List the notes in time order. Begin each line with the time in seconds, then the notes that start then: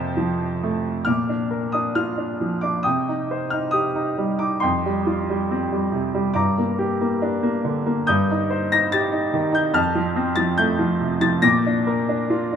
Already playing: F2 C3 C5 F5 A5
0.17 F3
0.63 A3
1.05 A#2 D6 F6
1.29 D4
1.51 A#4
1.72 D4 D#6
1.95 F4 F6
2.18 D4
2.41 F3
2.61 D4 D6
2.83 C3 G5 D#6
3.08 D#4
3.31 C5
3.50 D#4 F6
3.71 G4 D#6
3.95 D#4
4.18 G3
4.39 D#4 D6
4.60 F2 G5 C6
4.86 G3
5.07 F4
5.30 G3
5.51 C4
5.72 G3
5.92 C3
6.14 G3
6.34 G2 A#5 D6
6.58 A#3
6.79 G4
7.01 A#3
7.22 D4
7.43 A#3
7.65 D3
7.86 A#3
8.07 G2 D#6 G6
8.31 D#4
8.50 C5
8.72 D#4 A#6
8.92 G4 A6
9.12 D#4
9.34 D#3
9.52 D#4 G6
9.73 F2 A5 F6
9.95 F3
10.16 C4
10.36 F3 A6
10.58 A3 G6
10.79 F3
11.00 C3
11.21 F3 A6
11.42 A#2 D6 A#6
11.66 D4
11.87 A#4
12.09 D4
12.30 F4
12.52 D4